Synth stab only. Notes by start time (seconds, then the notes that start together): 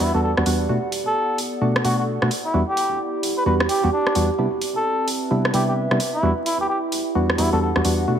0.00 E2 G3 B3 D4 F#4
0.14 E2 G3 B3 D4 F#4
0.37 E2 G3 B3 D4 F#4
0.46 E2 G3 B3 D4 F#4
0.69 B2 A3 D4 F#4
1.61 B2 A3 D4 F#4
1.84 B2 A3 D4 F#4
2.22 B2 A3 D4 F#4
2.54 E2 G3 B3 D4 F#4
3.46 E2 G3 B3 D4 F#4
3.84 E2 G3 B3 D4 F#4
4.15 E2 G3 B3 D4 F#4
4.38 C3 G3 B3 D4 E4
5.31 C3 G3 B3 D4 E4
5.54 C3 G3 B3 D4 E4
5.91 C3 G3 B3 D4 E4
6.23 E2 G3 B3 D4 F#4
7.15 E2 G3 B3 D4 F#4
7.38 E2 G3 B3 D4 F#4
7.53 E2 G3 B3 D4 F#4
7.76 E2 G3 B3 D4 F#4
7.85 E2 G3 B3 D4 F#4
8.08 B2 A3 D4 F#4